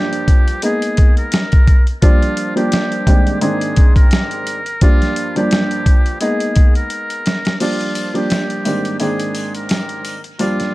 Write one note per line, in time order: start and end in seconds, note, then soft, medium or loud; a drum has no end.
0.00 0.57 G2 medium
0.00 0.57 F3 medium
0.00 0.57 G3 medium
0.00 0.57 A#3 medium
0.00 0.57 D4 loud
0.00 0.59 G4 medium
0.13 closed hi-hat soft
0.28 kick medium
0.28 closed hi-hat medium
0.48 closed hi-hat soft
0.62 1.76 G#3 loud
0.62 1.76 A#3 medium
0.62 1.76 B3 medium
0.62 1.77 D#4 loud
0.62 1.15 G#4 medium
0.62 closed hi-hat loud
0.82 closed hi-hat medium
0.97 kick loud
0.97 closed hi-hat medium
1.17 1.85 A#4 medium
1.17 closed hi-hat soft
1.32 snare loud
1.32 closed hi-hat medium
1.52 kick loud
1.52 closed hi-hat soft
1.67 kick medium
1.67 closed hi-hat medium
1.87 closed hi-hat soft
2.02 2.52 F3 medium
2.02 2.53 G3 medium
2.02 2.53 A#3 medium
2.02 2.53 D4 loud
2.02 2.54 F4 loud
2.02 kick loud
2.02 closed hi-hat loud
2.22 closed hi-hat medium
2.37 closed hi-hat medium
2.56 3.06 F3 medium
2.56 3.06 G3 medium
2.56 3.06 A#3 medium
2.56 3.07 D4 loud
2.56 3.38 G4 medium
2.56 closed hi-hat soft
2.72 snare loud
2.72 closed hi-hat medium
2.92 closed hi-hat soft
3.07 3.40 G#2 medium
3.07 3.40 D#3 medium
3.07 3.40 G3 medium
3.07 3.40 A#3 medium
3.07 3.40 C4 medium
3.07 3.40 D4 medium
3.07 kick medium
3.07 closed hi-hat medium
3.27 closed hi-hat soft
3.41 4.55 G#2 loud
3.41 4.55 D#3 medium
3.41 4.56 G#3 medium
3.41 4.56 A#3 medium
3.41 4.56 C4 medium
3.41 4.56 D4 medium
3.41 3.93 G#4 medium
3.41 closed hi-hat loud
3.61 closed hi-hat medium
3.76 kick loud
3.76 closed hi-hat medium
3.96 4.78 A#4 medium
3.96 kick medium
3.96 closed hi-hat soft
4.11 snare loud
4.11 closed hi-hat medium
4.31 closed hi-hat soft
4.47 closed hi-hat medium
4.66 closed hi-hat soft
4.81 5.32 G2 medium
4.81 5.32 F3 medium
4.81 5.32 G3 medium
4.81 5.32 A#3 medium
4.81 5.32 D4 loud
4.81 5.33 F4 loud
4.81 kick loud
4.81 closed hi-hat loud
5.02 snare soft
5.02 closed hi-hat medium
5.16 closed hi-hat medium
5.36 6.15 G2 loud
5.36 6.15 F3 medium
5.36 6.15 G3 medium
5.36 6.15 A#3 medium
5.36 6.15 D4 loud
5.36 6.18 G4 medium
5.36 closed hi-hat medium
5.51 snare loud
5.51 closed hi-hat medium
5.71 closed hi-hat soft
5.86 kick medium
5.86 closed hi-hat medium
6.06 closed hi-hat soft
6.20 7.34 G#3 medium
6.20 7.34 A#3 medium
6.20 7.35 B3 medium
6.20 7.35 D#4 loud
6.20 6.72 G#4 medium
6.20 closed hi-hat loud
6.40 closed hi-hat medium
6.56 kick loud
6.56 closed hi-hat medium
6.75 7.57 A#4 medium
6.75 closed hi-hat soft
6.90 closed hi-hat medium
7.10 closed hi-hat soft
7.26 snare medium
7.26 closed hi-hat medium
7.45 snare medium
7.45 closed hi-hat soft
7.60 8.10 F3 medium
7.60 8.11 G3 medium
7.60 8.11 A#3 medium
7.60 8.11 D4 loud
7.60 8.12 F4 loud
7.60 closed hi-hat medium
7.60 crash loud
7.60 sleigh bells medium
7.81 closed hi-hat medium
7.95 closed hi-hat medium
7.95 sleigh bells medium
8.14 8.65 F3 medium
8.14 8.64 G3 medium
8.14 8.64 A#3 medium
8.14 8.65 D4 loud
8.14 8.97 G4 medium
8.14 closed hi-hat soft
8.30 snare loud
8.30 closed hi-hat medium
8.30 sleigh bells medium
8.50 closed hi-hat soft
8.65 8.98 G#2 medium
8.65 8.98 D#3 medium
8.65 8.98 G3 medium
8.65 8.98 A#3 medium
8.65 8.98 C4 medium
8.65 8.98 D4 loud
8.65 closed hi-hat medium
8.65 sleigh bells medium
8.85 closed hi-hat soft
8.99 10.13 G#2 medium
8.99 10.14 D#3 medium
8.99 10.14 G#3 medium
8.99 10.14 A#3 medium
8.99 10.14 C4 medium
8.99 10.14 D4 loud
8.99 9.51 G#4 medium
8.99 closed hi-hat loud
8.99 sleigh bells medium
9.20 closed hi-hat medium
9.35 closed hi-hat medium
9.35 sleigh bells medium
9.55 10.23 A#4 medium
9.55 closed hi-hat soft
9.69 snare loud
9.69 closed hi-hat medium
9.69 sleigh bells medium
9.89 closed hi-hat soft
10.05 closed hi-hat medium
10.05 sleigh bells medium
10.24 closed hi-hat soft
10.39 10.74 G2 medium
10.39 10.74 F3 medium
10.39 10.74 G3 medium
10.39 10.74 A#3 medium
10.39 10.74 D4 loud
10.39 10.74 F4 loud
10.39 closed hi-hat loud
10.39 sleigh bells medium
10.60 snare soft
10.60 closed hi-hat medium